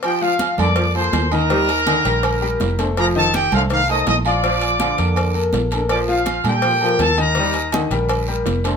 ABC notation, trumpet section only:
X:1
M:4/4
L:1/16
Q:1/4=164
K:Bb
V:1 name="Trumpet section"
[Gg]2 f4 [dd']4 [cc']4 [Bb]2- | [Bb]12- [Bb]2 z2 | [Bb]2 [Aa]2 [Gg]2 f2 f2 [ee']2 [ee']2 [dd']2- | [dd']8- [dd']3 z4 z |
[dd']2 f4 [Gg]6 [Aa]2 [Bb]2- | [Bb]4 z12 |]